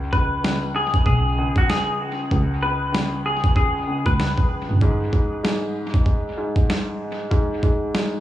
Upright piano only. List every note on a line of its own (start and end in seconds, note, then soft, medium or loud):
0.00 0.11 C#2 medium
0.13 0.42 C#2 medium
0.44 1.37 C#2 medium
1.38 2.30 C#2 medium
2.31 2.61 C#2 medium
2.62 2.90 C#2 medium
2.92 3.86 C#2 medium
3.87 4.81 C#2 medium
4.82 5.11 G#2 medium
5.13 5.42 G#2 medium
5.44 6.36 G#2 medium
6.38 7.29 G#2 medium
7.31 7.62 G#2 medium
7.63 7.93 G#2 medium
7.95 8.20 G#2 medium